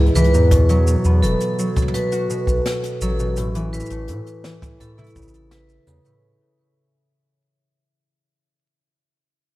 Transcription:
0.00 0.10 C#2 loud
0.00 0.33 G#2 medium
0.00 0.15 E3 medium
0.00 0.57 G#3 medium
0.00 1.88 E4 loud
0.00 0.53 G#4 medium
0.00 0.16 B4 loud
0.06 closed hi-hat soft
0.15 0.34 C#2 medium
0.15 0.57 E3 loud
0.15 0.50 B4 loud
0.15 closed hi-hat soft
0.15 mid tom medium
0.15 shaker medium
0.24 closed hi-hat medium
0.33 0.96 E2 medium
0.33 0.57 G#2 medium
0.33 shaker medium
0.51 0.86 B2 medium
0.51 kick loud
0.51 closed hi-hat medium
0.51 shaker medium
0.69 1.58 F#3 loud
0.69 closed hi-hat medium
0.69 shaker soft
0.87 1.22 B2 medium
0.87 shaker medium
1.05 1.24 E2 loud
1.05 4.16 B3 medium
1.05 shaker medium
1.22 1.35 E1 loud
1.22 1.93 B2 medium
1.22 1.57 A4 medium
1.22 closed hi-hat medium
1.22 shaker medium
1.40 closed hi-hat medium
1.40 shaker soft
1.59 3.01 F#3 medium
1.59 shaker medium
1.76 kick loud
1.76 closed hi-hat soft
1.76 mid tom soft
1.76 shaker medium
1.82 mid tom medium
1.88 mid tom medium
1.94 2.29 B2 medium
1.94 2.28 B4 loud
1.94 closed hi-hat medium
1.94 shaker medium
2.12 4.56 F#4 loud
2.12 closed hi-hat medium
2.12 shaker soft
2.30 3.18 B2 medium
2.30 shaker medium
2.47 2.60 B1 medium
2.47 kick medium
2.47 shaker soft
2.65 snare medium
2.65 closed hi-hat medium
2.65 shaker medium
2.83 closed hi-hat medium
2.83 shaker soft
3.01 3.82 A1 medium
3.01 3.42 F#3 loud
3.01 3.36 A4 medium
3.01 shaker medium
3.19 3.42 B2 medium
3.19 shaker soft
3.36 3.72 A2 medium
3.36 closed hi-hat medium
3.36 shaker medium
3.55 4.44 E3 loud
3.55 closed hi-hat medium
3.55 shaker soft
3.73 4.07 A2 medium
3.73 4.07 B4 loud
3.73 shaker medium
3.80 shaker medium
3.86 shaker medium
3.90 4.10 A1 loud
3.90 7.24 A3 medium
3.90 closed hi-hat medium
3.90 shaker medium
4.08 4.21 A2 loud
4.08 4.79 A2 medium
4.08 closed hi-hat medium
4.08 shaker medium
4.26 closed hi-hat medium
4.26 shaker soft
4.44 5.21 E3 medium
4.44 snare medium
4.44 shaker medium
4.62 kick loud
4.62 closed hi-hat medium
4.62 mid tom medium
4.62 shaker soft
4.80 5.21 A2 medium
4.80 5.14 A4 medium
4.80 kick medium
4.80 closed hi-hat medium
4.80 shaker medium
4.98 7.59 E4 loud
4.98 mid tom medium
4.98 shaker soft
5.04 closed hi-hat medium
5.04 shaker soft
5.10 shaker soft
5.16 5.79 A1 medium
5.16 5.86 C#3 medium
5.16 kick loud
5.16 shaker soft
5.16 shaker medium
5.22 shaker soft
5.22 shaker medium
5.28 shaker soft
5.34 closed hi-hat medium
5.34 shaker soft
5.51 5.85 B4 loud
5.51 snare medium
5.51 closed hi-hat medium
5.51 shaker medium
5.69 shaker soft
5.87 6.00 E2 medium
5.87 6.10 C#3 loud
5.87 mid tom medium
5.87 shaker medium
6.04 6.28 A2 medium
6.04 closed hi-hat soft
6.04 shaker soft

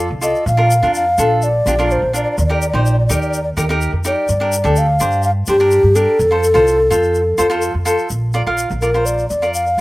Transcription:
0.11 0.32 C2 medium
0.21 0.44 F4 medium
0.21 0.44 A4 medium
0.21 0.44 D5 medium
0.21 0.45 D#5 medium
0.21 shaker medium
0.35 shaker soft
0.46 0.79 A#1 loud
0.46 0.91 F5 loud
0.46 shaker medium
0.57 0.72 D4 medium
0.57 0.73 F4 medium
0.57 0.73 A#4 medium
0.71 shaker medium
0.83 1.15 F2 medium
0.83 1.04 D4 medium
0.83 1.04 F4 medium
0.83 1.04 A#4 medium
0.83 shaker soft
0.94 1.45 F5 medium
0.94 shaker medium
1.18 1.61 A#1 medium
1.18 1.47 D4 medium
1.18 1.47 F4 medium
1.18 1.47 A4 medium
1.18 shaker medium
1.42 1.93 D5 loud
1.42 shaker medium
1.66 1.98 A#1 medium
1.66 1.74 D4 medium
1.66 1.74 F4 medium
1.66 1.74 G4 medium
1.66 shaker medium
1.79 2.00 D4 medium
1.79 2.00 F4 medium
1.79 2.00 A#4 medium
1.79 shaker soft
1.91 2.15 C5 medium
1.91 shaker medium
2.02 2.23 A#1 medium
2.13 2.35 D4 medium
2.13 2.35 F4 medium
2.13 2.36 A#4 medium
2.13 2.22 D5 medium
2.13 shaker medium
2.24 2.30 D5 medium
2.32 2.37 D5 medium
2.38 2.70 D#2 medium
2.38 2.45 D5 medium
2.38 shaker medium
2.46 2.64 D#4 medium
2.46 2.52 D5 medium
2.50 2.64 G4 medium
2.50 2.64 A#4 medium
2.50 2.59 D5 medium
2.61 2.67 D5 medium
2.61 shaker medium
2.70 3.06 A#1 medium
2.70 2.95 D#4 medium
2.70 2.75 D5 soft
2.74 2.95 G4 medium
2.74 2.96 C5 medium
2.74 2.82 D5 medium
2.84 2.90 D5 soft
2.84 shaker medium
2.92 2.98 D5 medium
2.99 3.05 D5 medium
3.06 3.52 D#2 medium
3.06 3.38 D#4 medium
3.06 3.38 G4 medium
3.06 3.12 D5 medium
3.06 shaker medium
3.10 3.39 A#4 medium
3.10 3.20 D5 medium
3.22 3.28 D5 medium
3.22 shaker soft
3.28 3.35 D5 medium
3.34 3.42 D5 medium
3.34 shaker medium
3.44 3.50 D5 medium
3.57 3.89 D#2 medium
3.57 3.64 D#4 medium
3.57 3.64 G4 medium
3.57 3.65 A#4 medium
3.57 shaker medium
3.69 3.91 D#4 medium
3.69 3.91 G4 medium
3.69 3.91 A#4 medium
3.69 shaker soft
3.81 shaker medium
3.93 4.14 F2 medium
4.04 4.26 D#4 medium
4.04 4.26 G4 medium
4.04 4.27 A#4 medium
4.04 4.79 D5 medium
4.04 shaker medium
4.28 4.61 G2 medium
4.28 shaker medium
4.40 4.55 D4 medium
4.40 4.55 G4 medium
4.40 4.55 A#4 medium
4.52 shaker medium
4.64 4.97 D2 medium
4.64 4.86 D4 medium
4.64 4.86 G4 medium
4.64 4.86 A4 medium
4.64 shaker soft
4.76 5.24 F5 medium
4.76 shaker medium
5.00 5.43 G2 medium
5.00 5.29 D4 medium
5.00 5.29 G4 medium
5.00 5.29 C5 medium
5.00 shaker loud
5.12 shaker soft
5.23 5.31 F5 loud
5.23 shaker medium
5.47 5.80 G2 medium
5.47 5.55 D4 medium
5.47 5.55 G4 medium
5.47 5.97 G4 loud
5.47 5.56 C5 medium
5.47 shaker medium
5.59 5.81 D4 medium
5.59 5.81 G4 medium
5.59 5.82 A#4 medium
5.59 shaker soft
5.71 shaker medium
5.83 6.05 G2 medium
5.95 6.17 D4 medium
5.95 6.17 G4 medium
5.95 7.63 A4 loud
5.95 6.17 A#4 medium
5.95 shaker medium
6.19 6.52 F2 loud
6.19 shaker medium
6.31 6.45 F4 medium
6.31 6.46 A4 medium
6.31 6.46 C5 medium
6.44 shaker loud
6.54 6.87 C2 medium
6.54 6.76 F4 medium
6.54 6.76 A4 medium
6.54 6.77 C5 medium
6.54 shaker soft
6.67 shaker medium
6.90 7.34 F2 loud
6.90 7.19 F4 medium
6.90 7.20 A4 medium
6.90 7.20 C5 medium
6.90 shaker medium
7.03 shaker soft
7.15 shaker medium
7.38 7.71 F2 medium
7.38 7.46 F4 medium
7.38 7.46 A4 medium
7.38 7.46 C5 medium
7.38 shaker medium
7.50 7.72 F4 medium
7.50 7.72 A4 medium
7.50 7.72 C5 loud
7.50 shaker soft
7.62 shaker medium
7.74 7.96 F2 medium
7.85 8.07 F4 medium
7.85 8.08 A4 medium
7.85 8.08 C5 medium
7.85 shaker medium
7.98 shaker soft
8.10 8.43 A#1 medium
8.10 shaker medium
8.33 8.41 F4 medium
8.33 8.42 A#4 medium
8.33 8.42 D5 medium
8.33 shaker medium
8.46 8.68 A#1 medium
8.46 8.68 F4 medium
8.46 8.68 A#4 medium
8.46 8.68 F5 medium
8.58 shaker medium
8.70 9.24 A#1 medium
8.70 shaker soft
8.81 8.89 F4 medium
8.81 9.07 A#4 medium
8.81 8.90 A#4 medium
8.81 8.90 D5 medium
8.81 shaker medium
8.94 9.23 F4 medium
8.94 9.23 A#4 medium
8.94 9.23 C5 medium
8.94 shaker soft
9.06 9.28 D5 medium
9.06 shaker medium
9.18 shaker soft
9.29 9.79 F2 medium
9.29 9.52 D5 medium
9.29 shaker medium
9.42 9.64 F4 medium
9.42 9.64 A#4 medium
9.42 9.64 D5 medium
9.42 shaker soft
9.54 9.81 F5 loud
9.54 shaker medium
9.67 shaker soft
9.78 9.81 A#1 medium

